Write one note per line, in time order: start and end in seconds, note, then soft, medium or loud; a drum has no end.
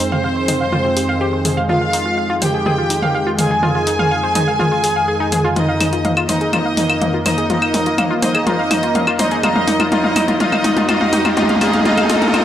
0.00 12.45 F2 medium
0.00 12.45 D#3 medium
0.00 5.55 G#3 medium
0.00 1.60 C4 loud
0.00 0.03 D#4 medium
0.00 1.60 C5 loud
0.12 0.16 F5 loud
0.12 mid tom soft
0.24 0.30 F5 medium
0.36 0.40 C5 medium
0.48 0.54 D#4 medium
0.48 open hi-hat loud
0.48 mid tom medium
0.61 0.64 F5 medium
0.72 0.78 F4 loud
0.72 mid tom medium
0.85 0.93 F4 medium
0.97 1.00 G4 medium
0.97 open hi-hat loud
1.09 1.12 F5 loud
1.21 1.27 G4 loud
1.33 1.36 C5 medium
1.45 1.51 G#4 medium
1.45 open hi-hat loud
1.45 mid tom medium
1.57 1.63 F5 loud
1.69 2.32 F4 loud
1.69 1.75 F4 loud
1.69 2.32 F5 loud
1.69 mid tom medium
1.81 1.87 F5 medium
1.93 1.97 D#4 medium
1.93 open hi-hat loud
2.06 2.11 F4 medium
2.18 2.23 F5 medium
2.30 2.36 F4 loud
2.42 3.29 G4 loud
2.42 2.45 C5 medium
2.42 3.29 G5 loud
2.42 open hi-hat loud
2.42 mid tom medium
2.54 2.63 G#4 medium
2.66 2.72 G#4 loud
2.66 mid tom medium
2.78 2.87 F4 medium
2.90 2.94 D#4 medium
2.90 open hi-hat loud
3.02 3.06 F5 loud
3.02 mid tom medium
3.15 3.20 F5 medium
3.27 3.30 F4 loud
3.39 5.47 G#4 loud
3.39 3.47 F5 medium
3.39 5.47 G#5 loud
3.39 open hi-hat loud
3.39 mid tom medium
3.51 3.59 G#4 medium
3.63 3.69 F4 loud
3.63 mid tom medium
3.75 3.84 F4 medium
3.87 3.91 D#4 medium
3.87 open hi-hat loud
3.99 4.03 F5 loud
3.99 mid tom medium
4.11 4.17 F5 medium
4.23 4.27 C5 medium
4.35 4.41 D#4 medium
4.35 open hi-hat loud
4.35 mid tom medium
4.48 4.51 F5 medium
4.60 4.65 F4 loud
4.60 mid tom medium
4.72 4.80 F4 medium
4.84 4.90 G#4 medium
4.84 open hi-hat loud
4.96 5.02 F5 medium
5.08 5.17 G#4 medium
5.20 5.29 D#4 loud
5.32 5.38 G#4 loud
5.32 open hi-hat loud
5.32 mid tom medium
5.44 5.50 F4 loud
5.56 12.45 A#3 medium
5.56 6.19 D#4 medium
5.56 5.62 F4 medium
5.56 6.19 D#5 loud
5.56 closed hi-hat soft
5.56 mid tom medium
5.56 riser medium
5.69 5.74 F5 medium
5.81 5.84 D#4 medium
5.81 open hi-hat loud
5.81 mid tom medium
5.81 claves medium
5.93 5.98 F4 medium
5.93 closed hi-hat soft
6.05 6.11 F5 medium
6.05 closed hi-hat soft
6.05 mid tom medium
6.17 6.23 F4 loud
6.17 claves medium
6.29 6.51 D#4 medium
6.29 6.32 C5 medium
6.29 6.51 D#5 medium
6.29 open hi-hat loud
6.29 mid tom medium
6.41 6.50 G#4 medium
6.41 closed hi-hat soft
6.53 7.16 D#4 medium
6.53 6.59 F4 loud
6.53 7.16 D#5 loud
6.53 closed hi-hat soft
6.53 mid tom medium
6.53 claves medium
6.65 6.71 F5 medium
6.77 6.81 D#4 medium
6.77 open hi-hat loud
6.77 mid tom medium
6.89 6.95 F4 medium
6.89 closed hi-hat soft
6.89 claves medium
7.01 7.07 F5 medium
7.01 closed hi-hat soft
7.01 mid tom medium
7.14 7.19 F4 medium
7.26 7.48 D#4 medium
7.26 7.29 C5 medium
7.26 7.48 D#5 medium
7.26 open hi-hat loud
7.26 mid tom medium
7.26 claves medium
7.38 7.46 G#4 medium
7.38 closed hi-hat soft
7.50 8.13 D#4 loud
7.50 7.56 F4 loud
7.50 8.13 D#5 loud
7.50 closed hi-hat soft
7.50 mid tom medium
7.62 7.68 F5 medium
7.62 claves medium
7.74 7.78 D#4 medium
7.74 open hi-hat loud
7.74 mid tom medium
7.86 7.92 F4 medium
7.86 closed hi-hat soft
7.98 8.04 F5 medium
7.98 closed hi-hat soft
7.98 mid tom medium
7.98 claves medium
8.11 8.16 F4 loud
8.22 8.45 D#4 loud
8.22 8.26 C5 medium
8.22 8.45 D#5 medium
8.22 open hi-hat loud
8.22 mid tom medium
8.35 8.43 G#4 medium
8.35 closed hi-hat soft
8.35 claves medium
8.47 9.10 D#4 loud
8.47 8.53 F4 loud
8.47 9.10 D#5 loud
8.47 closed hi-hat soft
8.47 mid tom medium
8.59 8.65 F5 medium
8.71 8.74 D#4 medium
8.71 open hi-hat loud
8.71 mid tom medium
8.71 claves medium
8.83 8.89 F4 medium
8.83 closed hi-hat soft
8.95 9.01 F5 medium
8.95 closed hi-hat soft
8.95 mid tom medium
9.07 9.13 F4 loud
9.07 claves medium
9.19 9.41 D#4 medium
9.19 9.23 C5 medium
9.19 9.42 D#5 medium
9.19 open hi-hat loud
9.19 mid tom medium
9.31 9.40 G#4 medium
9.31 closed hi-hat soft
9.43 9.90 D#4 loud
9.43 9.49 F4 loud
9.43 9.90 D#5 loud
9.43 closed hi-hat soft
9.43 mid tom medium
9.43 claves medium
9.56 9.61 F5 medium
9.56 mid tom medium
9.68 9.71 D#4 medium
9.68 open hi-hat loud
9.68 mid tom medium
9.80 9.86 F4 medium
9.80 closed hi-hat soft
9.80 mid tom medium
9.80 claves medium
9.92 10.38 D#4 loud
9.92 9.98 F4 loud
9.92 10.38 D#5 loud
9.92 closed hi-hat soft
9.92 mid tom loud
10.04 10.10 F5 medium
10.04 mid tom medium
10.16 10.20 D#4 medium
10.16 open hi-hat loud
10.16 mid tom loud
10.16 claves medium
10.28 10.34 F4 medium
10.28 closed hi-hat soft
10.28 mid tom medium
10.40 10.87 D#4 loud
10.40 10.46 F4 loud
10.40 10.87 D#5 loud
10.40 closed hi-hat soft
10.40 mid tom medium
10.52 10.58 F5 medium
10.52 mid tom medium
10.52 claves medium
10.64 10.68 D#4 medium
10.64 open hi-hat loud
10.64 mid tom loud
10.77 10.82 F4 medium
10.77 closed hi-hat soft
10.77 mid tom medium
10.89 10.94 F4 loud
10.89 11.35 D#5 loud
10.89 closed hi-hat soft
10.89 mid tom loud
10.89 claves medium
11.01 11.07 F5 medium
11.01 mid tom medium
11.13 11.16 D#4 medium
11.13 open hi-hat loud
11.13 mid tom loud
11.25 11.31 F4 medium
11.25 closed hi-hat soft
11.25 mid tom medium
11.25 claves medium
11.37 11.59 D#4 loud
11.37 11.43 F4 loud
11.37 11.59 D#5 loud
11.37 closed hi-hat soft
11.37 mid tom loud
11.43 mid tom medium
11.49 11.55 F5 medium
11.49 closed hi-hat soft
11.49 mid tom medium
11.55 mid tom medium
11.61 11.84 D#4 loud
11.61 11.67 F4 loud
11.61 11.83 D#5 loud
11.61 open hi-hat loud
11.61 mid tom loud
11.61 claves medium
11.67 mid tom medium
11.73 11.79 F5 medium
11.73 closed hi-hat soft
11.73 mid tom medium
11.79 mid tom medium
11.85 12.08 D#4 loud
11.85 11.91 F4 loud
11.85 12.08 D#5 loud
11.85 closed hi-hat soft
11.85 mid tom loud
11.91 mid tom loud
11.98 12.03 F5 medium
11.98 closed hi-hat soft
11.98 mid tom medium
11.98 claves medium
12.04 mid tom medium
12.10 12.32 D#4 loud
12.10 12.15 F4 loud
12.10 12.32 D#5 loud
12.10 open hi-hat loud
12.10 mid tom loud
12.16 mid tom medium
12.22 12.27 F5 medium
12.22 closed hi-hat soft
12.22 mid tom medium
12.28 mid tom medium
12.34 12.45 D#4 loud
12.34 12.40 F4 loud
12.34 12.45 D#5 loud
12.34 closed hi-hat soft
12.34 mid tom loud
12.34 claves medium
12.40 mid tom medium